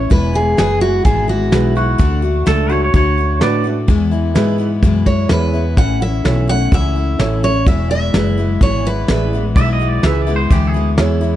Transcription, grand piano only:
0.57 E4 G#4 B4
1.52 E4 G#4 B4
2.46 D4 F#4 A4
3.40 D4 F#4 B4
4.34 E4 G#4 B4
5.29 E4 G#4 C#5
6.24 E4 A4 C#5
7.18 E4 A4 C#5
8.13 E4 G#4 B4
9.08 E4 G#4 D5
10.03 E4 G#4 B4
10.98 E4 G#4 C#5

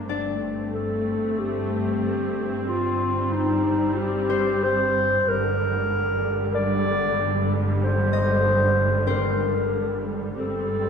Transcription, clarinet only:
0.74 A4
1.39 G4
2.68 F4
3.33 D#4
3.98 G4
4.63 C5
5.28 A#4
6.55 D5
7.84 C5
9.09 A#4
10.38 A4

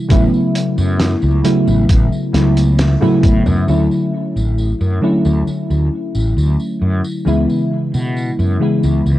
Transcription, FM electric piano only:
0.09 C#3 F#3 A3 B3 E4
1.44 C#3 F#3 A3 B3 E4
2.33 C#3 F#3 A3 B3 E4
3.01 C#3 F#3 A3 B3 E4
3.67 D3 F#3 A3 C#4 E4
5.01 D3 F#3 A3 C#4 E4
7.25 C#3 E3 G#3 B3 E4
8.59 C#3 E3 G#3 B3 E4

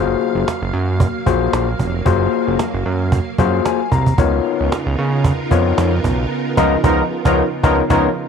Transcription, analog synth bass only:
Already playing: F#1
0.35 F#1
0.62 F#1
0.73 F#2
1.26 A#1
1.53 A#1
1.80 F1
2.06 F#1
2.47 F#1
2.74 F#1
2.86 F#2
3.38 F#2
3.92 C2
4.18 C#2
4.60 C#2
4.86 C#2
4.98 C#3
5.51 F2
5.78 F2
6.04 B1
6.57 C#2
6.84 C#2
7.25 C#2
7.63 C#2
7.90 C#2

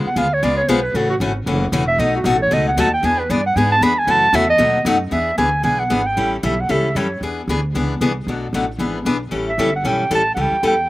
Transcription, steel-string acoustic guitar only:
0.16 C#3 G#3 B3 F4 G#4
0.43 C#3 G#3 B3 F4 G#4
0.69 C#3 G#3 B3 F4 G#4
0.95 C#3 E3 A3 C#4 F#4
1.21 C#3 E3 A3 C#4 F#4
1.47 C#3 E3 A3 C#4 F#4
1.72 C#3 E3 A3 C#4 F#4
1.99 B2 F#3 A3 D#4 F#4
2.25 B2 F#3 A3 D#4 F#4
2.51 B2 F#3 A3 D#4 F#4
2.77 B2 F#3 A3 D#4 F#4
3.03 E3 B3 D4 G#4
3.30 E3 B3 D4 G#4
3.57 E3 B3 D4 G#4
3.82 E3 B3 D4 G#4
4.07 C#3 E3 A3 C#4 F#4
4.33 C#3 E3 A3 C#4 F#4
4.58 B2 F#3 A3 D#4 F#4
4.86 B2 F#3 A3 D#4 F#4
5.11 E3 B3 D4 G#4
5.38 E3 B3 D4 G#4
5.63 E3 B3 D4 G#4
5.90 E3 B3 D4 G#4
6.17 E3 G3 C#4 E4 A4
6.43 E3 G3 C#4 E4 A4
6.69 E3 G3 C#4 E4 A4
6.96 E3 G3 C#4 E4 A4
7.23 E3 B3 D4 G#4
7.49 E3 B3 D4 G#4
7.75 E3 B3 D4 G#4
8.01 E3 B3 D4 G#4
8.28 B2 F#3 A3 D4 F#4
8.54 B2 F#3 A3 D4 F#4
8.79 E3 B3 D4 G#4
9.06 E3 B3 D4 G#4
9.31 E3 G3 C#4 E4 A4
9.59 E3 G3 C#4 E4 A4
9.85 E3 G3 C#4 E4 A4
10.11 E3 G3 C#4 E4 A4
10.37 E3 G3 C#4 E4 A4
10.63 E3 G3 C#4 E4 A4

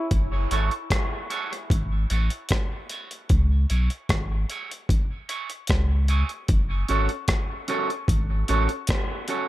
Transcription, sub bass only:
0.12 F#1
0.51 G#1
1.70 G#1
2.11 A1
3.30 C#2
3.71 B1
4.10 G#1
5.70 C#2
6.49 F#1
6.90 G#1
8.09 G#1
8.50 A1

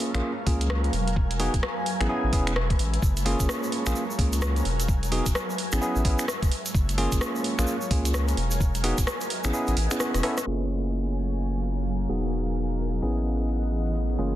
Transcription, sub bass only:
0.14 A#1
0.47 C#2
0.93 E1
1.54 E1
2.00 A1
2.24 A1
2.33 E1
2.79 A1
3.02 F#1
3.40 F#1
3.87 A#1
4.19 C#2
4.65 E1
5.26 E1
5.73 A1
5.96 A1
6.05 A1
6.42 E1
6.75 F#1
7.12 F#1
7.58 A#1
7.91 C#2
8.37 E1
8.98 E1
9.44 A1
9.68 A1
9.77 A1
10.14 E1
10.47 F#1
12.09 E1
13.02 A1
14.19 F#1

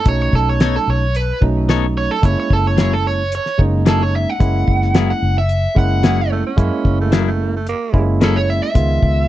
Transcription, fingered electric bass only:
0.06 B1
0.33 B1
0.88 B1
1.42 B1
2.23 F#1
2.50 F#1
3.59 F#1
4.40 F#1
4.68 F#1
5.22 F#1
5.76 F#1
6.58 F#2
6.85 F#1
7.94 F#1
8.76 C#2
9.03 C#2

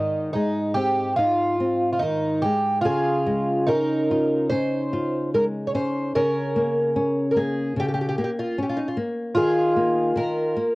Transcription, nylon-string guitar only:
Already playing: G#2 D#3
0.35 G#3
0.76 C4
1.18 D#4
1.60 C4
2.03 D#3
2.44 G#3
2.85 C#3
3.27 G#3
3.68 C#4
4.11 F4
4.52 C#4
4.93 F4
5.34 G#3
5.74 C#4
6.15 C#3
6.56 A#3
6.96 C#4
7.36 A#3
7.76 C#3
8.18 A#3
8.58 C#4
8.97 A#3
9.36 D#3
9.76 A#3
10.16 D#3
10.57 A#3

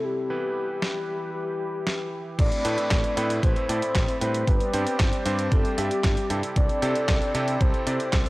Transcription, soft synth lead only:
0.04 G4
0.82 G4
1.34 G4
2.39 D5
3.43 C5
4.22 C5
4.48 B4
5.00 C5
5.52 A4
5.79 G4
6.56 D5
7.61 C5

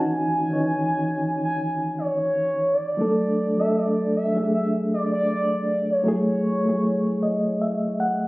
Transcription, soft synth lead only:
Already playing: G#5
1.45 G#5
1.98 C#5
2.73 D5
3.59 E5
3.78 D5
4.16 E5
4.54 E5
4.93 D5
5.14 D5
5.91 C#5

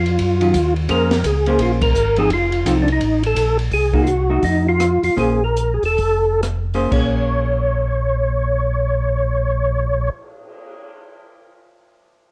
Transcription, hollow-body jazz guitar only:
0.41 D#3 F#3 C#4 F4
0.89 A#3 C#4 G#4 C5
1.47 A#3 C#4 G#4 C5
2.18 F3 C4 D#4 A4
2.66 F3 C4 D#4 A4
3.93 A#3 D#4 F#4
4.29 A3 D#4 F#4
5.17 A#3 C#4 G#4 C5
6.74 A#3 C#4 G#4 C5
6.91 A#3 C#4 G#4

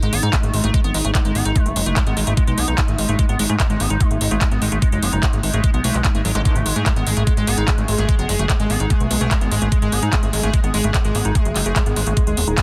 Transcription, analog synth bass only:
0.03 G#1
0.13 G#1
0.23 G#2
0.43 G#1
0.54 G#1
0.64 G#1
0.84 G#1
0.94 G#1
1.05 G#1
1.25 G#1
1.35 G#1
1.45 G#1
1.66 F#1
1.76 F#1
1.86 F#1
2.07 G#1
2.17 G#1
2.27 G#1
2.47 B1
2.58 B1
2.68 B1
2.88 G#1
2.98 G#1
3.09 G#1
3.29 G#1
3.39 G#1
3.50 G#2
3.70 G#1
3.80 G#1
3.90 G#1
4.11 G#1
4.21 G#1
4.31 G#1
4.52 G#1
4.62 G#1
4.72 G#1
4.92 F#1
5.03 F#1
5.13 F#1
5.33 G#1
5.43 G#1
5.54 G#1
5.74 B1
5.84 B1
5.94 B1
6.15 G#1
6.25 G#1
6.35 G#1
6.56 G#1
6.66 G#1
6.76 G#2
6.96 G#1
7.07 G#1
7.17 G#1
7.37 G#1
7.47 G#1
7.58 G#1
7.78 G#1
7.88 G#1
7.98 G#1
8.19 F#1
8.29 F#1
8.39 F#1
8.60 G#1
8.70 G#1
8.80 G#1
9.01 B1
9.11 B1
9.21 B1
9.41 G#1
9.52 G#1
9.62 G#1
9.82 G#1
9.92 G#1
10.03 G#2
10.23 G#1
10.33 G#1
10.43 G#1
10.64 G#1
10.74 G#1
10.84 G#1
11.05 G#1
11.15 G#1
11.25 G#1
11.45 F#1
11.56 F#1
11.66 F#1
11.86 G#1
11.96 G#1
12.07 G#1
12.27 D#1
12.37 D#1
12.47 D#1

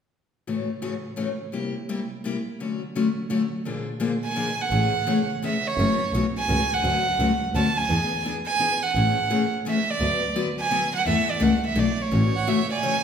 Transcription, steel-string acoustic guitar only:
0.47 A2 C#3 E3 A3 C#4 F#4
0.82 A2 C#3 E3 A3 C#4 F#4
1.16 A2 C#3 E3 A3 C#4 F#4
1.52 C3 G3 A#3 E4 G4
1.89 C3 G3 A#3 E4 G4
2.24 C3 G3 A#3 E4 G4
2.60 D3 F#3 A3 C#4 F#4
2.95 D3 F#3 A3 C#4 F#4
3.30 D3 F#3 A3 C#4 F#4
3.65 A#2 D3 F3 A#3 D4 G#4
4.00 A#2 D3 F3 A#3 D4 G#4
4.35 A#2 D3 F3 A#3 D4 G#4
4.71 C#3 E3 A3 C#4 G#4
5.07 C#3 E3 A3 C#4 G#4
5.42 C#3 E3 A3 C#4 G#4
5.79 C#3 E3 A3 C#4 F#4
6.14 C#3 E3 A3 C#4 F#4
6.48 C#3 E3 A3 C#4 F#4
6.84 D3 F#3 A3 C#4 F#4
7.20 D3 F#3 A3 C#4 F#4
7.55 D3 F#3 A3 C#4 F#4
7.90 E3 B3 D4 G#4
8.24 E3 B3 D4 G#4
8.59 E3 B3 D4 G#4
8.95 C#3 E3 A3 C#4 G#4
9.30 C#3 E3 A3 C#4 G#4
9.65 C#3 E3 A3 C#4 G#4
10.00 D3 F#3 B3 F#4 B4
10.36 D3 F#3 B3 F#4 B4
10.71 D3 F#3 B3 F#4 B4
11.07 E3 A3 D4 E4 A4
11.40 E3 A3 D4 E4 A4
11.75 E3 A3 D4 E4 A4
12.11 C#3 E3 A3 C#4 F#4
12.47 C#3 E3 A3 C#4 F#4
12.83 C#3 E3 A3 C#4 F#4

